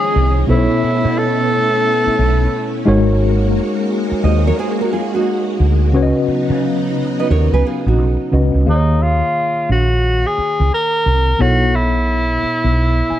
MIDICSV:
0, 0, Header, 1, 7, 480
1, 0, Start_track
1, 0, Key_signature, -6, "minor"
1, 0, Tempo, 681818
1, 337, Time_signature, 4, 2, 24, 8
1, 9289, End_track
2, 0, Start_track
2, 0, Title_t, "Nylon-string guitar"
2, 0, Program_c, 0, 24
2, 2985, Note_on_c, 0, 75, 74
2, 2989, Note_on_c, 0, 72, 57
2, 3126, Note_off_c, 0, 75, 0
2, 3129, Note_off_c, 0, 72, 0
2, 3149, Note_on_c, 0, 70, 80
2, 3149, Note_on_c, 0, 73, 92
2, 3221, Note_off_c, 0, 73, 0
2, 3222, Note_off_c, 0, 70, 0
2, 3231, Note_on_c, 0, 72, 83
2, 3237, Note_on_c, 0, 68, 76
2, 3370, Note_off_c, 0, 72, 0
2, 3373, Note_off_c, 0, 68, 0
2, 3385, Note_on_c, 0, 70, 80
2, 3391, Note_on_c, 0, 66, 66
2, 3460, Note_off_c, 0, 70, 0
2, 3463, Note_off_c, 0, 66, 0
2, 3468, Note_on_c, 0, 68, 82
2, 3475, Note_on_c, 0, 65, 67
2, 3608, Note_off_c, 0, 68, 0
2, 3612, Note_off_c, 0, 65, 0
2, 3624, Note_on_c, 0, 66, 73
2, 3631, Note_on_c, 0, 63, 60
2, 4155, Note_off_c, 0, 66, 0
2, 4159, Note_off_c, 0, 63, 0
2, 5066, Note_on_c, 0, 75, 75
2, 5069, Note_on_c, 0, 71, 67
2, 5140, Note_off_c, 0, 75, 0
2, 5142, Note_off_c, 0, 71, 0
2, 5145, Note_on_c, 0, 73, 85
2, 5150, Note_on_c, 0, 70, 64
2, 5287, Note_off_c, 0, 73, 0
2, 5289, Note_off_c, 0, 70, 0
2, 5305, Note_on_c, 0, 71, 79
2, 5308, Note_on_c, 0, 68, 69
2, 5380, Note_off_c, 0, 71, 0
2, 5382, Note_off_c, 0, 68, 0
2, 5396, Note_on_c, 0, 68, 83
2, 5397, Note_on_c, 0, 65, 73
2, 5532, Note_off_c, 0, 68, 0
2, 5533, Note_off_c, 0, 65, 0
2, 5547, Note_on_c, 0, 66, 66
2, 5550, Note_on_c, 0, 63, 59
2, 6077, Note_off_c, 0, 66, 0
2, 6078, Note_off_c, 0, 63, 0
2, 9289, End_track
3, 0, Start_track
3, 0, Title_t, "Tenor saxophone"
3, 0, Program_c, 1, 66
3, 0, Note_on_c, 1, 68, 109
3, 316, Note_off_c, 1, 68, 0
3, 351, Note_on_c, 1, 64, 83
3, 833, Note_on_c, 1, 69, 102
3, 844, Note_off_c, 1, 64, 0
3, 2025, Note_off_c, 1, 69, 0
3, 6121, Note_on_c, 1, 63, 75
3, 6355, Note_on_c, 1, 65, 83
3, 6365, Note_off_c, 1, 63, 0
3, 6825, Note_off_c, 1, 65, 0
3, 6840, Note_on_c, 1, 66, 82
3, 7227, Note_on_c, 1, 68, 97
3, 7237, Note_off_c, 1, 66, 0
3, 7545, Note_off_c, 1, 68, 0
3, 7561, Note_on_c, 1, 70, 101
3, 8034, Note_on_c, 1, 66, 93
3, 8045, Note_off_c, 1, 70, 0
3, 8271, Note_on_c, 1, 64, 96
3, 8282, Note_off_c, 1, 66, 0
3, 9289, Note_off_c, 1, 64, 0
3, 9289, End_track
4, 0, Start_track
4, 0, Title_t, "Tine electric piano"
4, 0, Program_c, 2, 4
4, 0, Control_c, 2, 64, 127
4, 0, Note_on_c, 2, 51, 68
4, 0, Note_on_c, 2, 58, 59
4, 0, Note_on_c, 2, 65, 57
4, 0, Note_on_c, 2, 68, 57
4, 0, Note_on_c, 2, 73, 72
4, 307, Note_off_c, 2, 51, 0
4, 308, Note_off_c, 2, 58, 0
4, 311, Note_off_c, 2, 65, 0
4, 315, Note_off_c, 2, 68, 0
4, 317, Note_off_c, 2, 73, 0
4, 332, Note_on_c, 2, 47, 69
4, 337, Note_on_c, 2, 59, 57
4, 341, Note_on_c, 2, 64, 62
4, 347, Control_c, 2, 64, 0
4, 350, Note_on_c, 2, 69, 60
4, 353, Note_on_c, 2, 72, 64
4, 401, Note_on_c, 2, 73, 71
4, 403, Note_off_c, 2, 72, 0
4, 482, Control_c, 2, 64, 127
4, 1986, Note_off_c, 2, 47, 0
4, 1988, Note_off_c, 2, 59, 0
4, 1990, Note_off_c, 2, 64, 0
4, 1995, Note_off_c, 2, 69, 0
4, 2009, Note_on_c, 2, 56, 83
4, 2012, Note_on_c, 2, 63, 69
4, 2018, Note_on_c, 2, 66, 73
4, 2020, Note_off_c, 2, 73, 0
4, 2024, Note_on_c, 2, 70, 74
4, 2027, Control_c, 2, 64, 0
4, 2030, Note_on_c, 2, 73, 86
4, 2149, Control_c, 2, 64, 127
4, 3905, Note_off_c, 2, 56, 0
4, 3906, Note_off_c, 2, 63, 0
4, 3909, Note_off_c, 2, 66, 0
4, 3912, Note_off_c, 2, 70, 0
4, 3915, Note_off_c, 2, 73, 0
4, 4175, Note_on_c, 2, 49, 75
4, 4181, Note_on_c, 2, 61, 71
4, 4185, Note_on_c, 2, 66, 78
4, 4187, Control_c, 2, 64, 0
4, 4191, Note_on_c, 2, 71, 77
4, 4198, Note_on_c, 2, 73, 74
4, 4242, Note_on_c, 2, 75, 89
4, 4245, Note_off_c, 2, 73, 0
4, 4303, Control_c, 2, 64, 127
4, 5828, Note_off_c, 2, 49, 0
4, 5831, Note_off_c, 2, 61, 0
4, 5833, Note_off_c, 2, 66, 0
4, 5835, Note_off_c, 2, 71, 0
4, 5856, Note_on_c, 2, 49, 57
4, 5860, Note_on_c, 2, 61, 57
4, 5861, Note_off_c, 2, 75, 0
4, 5865, Note_on_c, 2, 66, 55
4, 5867, Note_on_c, 2, 71, 54
4, 5870, Note_on_c, 2, 75, 63
4, 6090, Note_on_c, 2, 51, 58
4, 6095, Note_on_c, 2, 58, 49
4, 6096, Note_off_c, 2, 49, 0
4, 6098, Note_off_c, 2, 61, 0
4, 6100, Note_off_c, 2, 66, 0
4, 6100, Note_on_c, 2, 77, 51
4, 6102, Note_off_c, 2, 71, 0
4, 6103, Note_off_c, 2, 75, 0
4, 6105, Control_c, 2, 64, 0
4, 6106, Note_on_c, 2, 68, 50
4, 6114, Note_on_c, 2, 72, 51
4, 6158, Note_on_c, 2, 73, 64
4, 6164, Note_off_c, 2, 72, 0
4, 6247, Control_c, 2, 64, 127
4, 7985, Note_off_c, 2, 51, 0
4, 7988, Note_off_c, 2, 58, 0
4, 7990, Note_off_c, 2, 77, 0
4, 7993, Note_off_c, 2, 68, 0
4, 8016, Note_on_c, 2, 47, 57
4, 8019, Note_off_c, 2, 73, 0
4, 8022, Note_on_c, 2, 59, 55
4, 8026, Control_c, 2, 64, 0
4, 8026, Note_on_c, 2, 64, 57
4, 8032, Note_on_c, 2, 69, 50
4, 8035, Note_on_c, 2, 73, 67
4, 8167, Control_c, 2, 64, 127
4, 9224, Note_on_c, 2, 80, 63
4, 9289, Note_off_c, 2, 47, 0
4, 9289, Note_off_c, 2, 59, 0
4, 9289, Note_off_c, 2, 64, 0
4, 9289, Note_off_c, 2, 69, 0
4, 9289, Note_off_c, 2, 73, 0
4, 9289, Note_off_c, 2, 80, 0
4, 9289, End_track
5, 0, Start_track
5, 0, Title_t, "String machine"
5, 0, Program_c, 3, 50
5, 0, Note_on_c, 3, 53, 74
5, 0, Note_on_c, 3, 56, 80
5, 0, Note_on_c, 3, 61, 82
5, 0, Note_on_c, 3, 63, 101
5, 307, Note_off_c, 3, 63, 0
5, 311, Note_off_c, 3, 53, 0
5, 311, Note_off_c, 3, 56, 0
5, 328, Note_on_c, 3, 59, 84
5, 330, Note_on_c, 3, 64, 101
5, 332, Note_on_c, 3, 57, 86
5, 1995, Note_off_c, 3, 59, 0
5, 1996, Note_off_c, 3, 64, 0
5, 1998, Note_off_c, 3, 57, 0
5, 2013, Note_on_c, 3, 56, 78
5, 2014, Note_on_c, 3, 58, 72
5, 2015, Note_on_c, 3, 66, 91
5, 4153, Note_off_c, 3, 56, 0
5, 4154, Note_off_c, 3, 58, 0
5, 4154, Note_off_c, 3, 66, 0
5, 4171, Note_on_c, 3, 63, 97
5, 4174, Note_on_c, 3, 59, 84
5, 4176, Note_on_c, 3, 54, 82
5, 6065, Note_off_c, 3, 61, 0
5, 6075, Note_off_c, 3, 63, 0
5, 6076, Note_off_c, 3, 59, 0
5, 6077, Note_off_c, 3, 54, 0
5, 9289, End_track
6, 0, Start_track
6, 0, Title_t, "Fretless electric bass"
6, 0, Program_c, 4, 35
6, 109, Note_on_c, 4, 36, 85
6, 294, Note_off_c, 4, 36, 0
6, 344, Note_on_c, 4, 35, 103
6, 463, Note_off_c, 4, 35, 0
6, 735, Note_on_c, 4, 47, 104
6, 1113, Note_off_c, 4, 47, 0
6, 1539, Note_on_c, 4, 35, 86
6, 1728, Note_off_c, 4, 35, 0
6, 2022, Note_on_c, 4, 32, 95
6, 2521, Note_off_c, 4, 32, 0
6, 2982, Note_on_c, 4, 39, 82
6, 3169, Note_off_c, 4, 39, 0
6, 3940, Note_on_c, 4, 38, 90
6, 4182, Note_off_c, 4, 38, 0
6, 4182, Note_on_c, 4, 37, 108
6, 4301, Note_off_c, 4, 37, 0
6, 4572, Note_on_c, 4, 49, 96
6, 4951, Note_off_c, 4, 49, 0
6, 5140, Note_on_c, 4, 39, 95
6, 5260, Note_off_c, 4, 39, 0
6, 5293, Note_on_c, 4, 37, 89
6, 5360, Note_off_c, 4, 37, 0
6, 5533, Note_on_c, 4, 34, 91
6, 5618, Note_off_c, 4, 34, 0
6, 5618, Note_on_c, 4, 35, 96
6, 5739, Note_off_c, 4, 35, 0
6, 5861, Note_on_c, 4, 37, 94
6, 5981, Note_off_c, 4, 37, 0
6, 6012, Note_on_c, 4, 37, 82
6, 6080, Note_off_c, 4, 37, 0
6, 6102, Note_on_c, 4, 39, 99
6, 6479, Note_off_c, 4, 39, 0
6, 6822, Note_on_c, 4, 34, 86
6, 7200, Note_off_c, 4, 34, 0
6, 7459, Note_on_c, 4, 37, 77
6, 7524, Note_off_c, 4, 37, 0
6, 7785, Note_on_c, 4, 36, 82
6, 7971, Note_off_c, 4, 36, 0
6, 8024, Note_on_c, 4, 35, 98
6, 8712, Note_off_c, 4, 35, 0
6, 8898, Note_on_c, 4, 35, 79
6, 9154, Note_off_c, 4, 35, 0
6, 9289, End_track
7, 0, Start_track
7, 0, Title_t, "Muted fretless electric bass strokes"
7, 586, Note_on_c, 9, 29, 47
7, 656, Note_off_c, 9, 29, 0
7, 1453, Note_on_c, 9, 29, 47
7, 1524, Note_off_c, 9, 29, 0
7, 2895, Note_on_c, 9, 29, 48
7, 2966, Note_off_c, 9, 29, 0
7, 4421, Note_on_c, 9, 29, 50
7, 4491, Note_off_c, 9, 29, 0
7, 7306, Note_on_c, 9, 29, 43
7, 7376, Note_off_c, 9, 29, 0
7, 8749, Note_on_c, 9, 29, 40
7, 8820, Note_off_c, 9, 29, 0
7, 9223, Note_on_c, 9, 29, 42
7, 9289, Note_off_c, 9, 29, 0
7, 9289, End_track
0, 0, End_of_file